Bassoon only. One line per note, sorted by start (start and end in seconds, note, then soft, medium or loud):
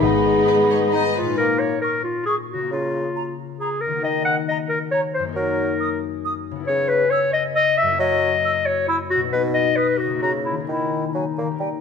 0.03 1.14 B3 medium
1.40 1.76 A#3 medium
2.71 3.08 C#3 medium
4.03 4.40 D#3 medium
5.36 5.72 F#3 medium
6.68 7.05 C#3 medium
7.99 8.36 F#3 medium
9.33 9.70 B2 medium
10.22 10.60 C#3 soft
10.69 11.06 D#3 medium
11.15 11.25 F#3 soft
11.38 11.48 A#3 medium
11.60 11.70 G3 soft